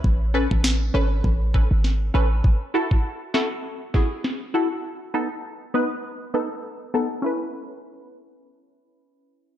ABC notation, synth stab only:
X:1
M:4/4
L:1/8
Q:"Swing 16ths" 1/4=100
K:C#m
V:1 name="Synth stab"
z [CAB] z [CAB] z [CAB] z [CAB] | z [EFA] z [EFA] z [EFG] z [EFA] | z [B,DA] z [B,DB] z [B,DA] z [B,DA] | [CEB]8 |]